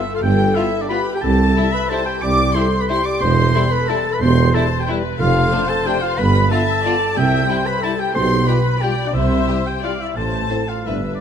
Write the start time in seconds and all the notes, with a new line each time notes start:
Already playing: A4 E5
0.14 F4 F5
0.22 G1 G2 G4 G5
0.55 B3 E4 F4 E5
0.81 D4 D5
0.89 B3 F4 G4 B4 B5
1.14 G4 G5
1.22 C2 A4 A5
1.56 G3 E4 E5
1.72 B4 B5
1.89 G3 E4 A4 C5 A5
2.06 G4 G5
2.21 C2 G4 D5 D6
2.54 G3 E4 A4 C5 C6
2.80 B4 B5
2.88 G3 E4 G4 C5 C6
3.05 D5 D6
3.21 E1 E2 C5 C6
3.54 G3 E4 A4
3.70 B4 B5
3.87 G3 E4 A4 A5
4.13 B4 B5
4.21 E1 E2 G4 C5 C6
4.54 G3 E4 A4 C5 A5
4.79 G4 G5
4.88 G3 E4 B4
5.20 F1 F2 F4 A4 F5
5.51 A3 D4 C5
5.68 A4 A5
5.86 A3 D4 G4 G5
6.01 F4 F5
6.18 G1 G2 B4 B5
6.51 B3 F4 A4 E5 A5
6.85 B3 F4 D5
7.16 C2 C3 G4 E5 G5
7.49 G3 E4 C5
7.66 B4 B5
7.82 G3 E4 A4 A5
7.99 G4 G5
8.14 B1 B2 G4 C5 C6
8.47 G3 F4 G4 B4 B5
8.81 G3 F4 G4 D5 G5
9.06 D4 D5
9.14 C2 C3 E4 C5 E5
9.48 G3 E4 G4
9.66 G4 G5
9.83 G3 E4 F4 G4 D5 F5
9.99 E4 E5
10.16 A1 A2 A4 C5 A5
10.50 C4 E4 A4 C5
10.68 F4 F5
10.86 G1 G2 B3 D4 E4 B4 E5
11.13 D4 D5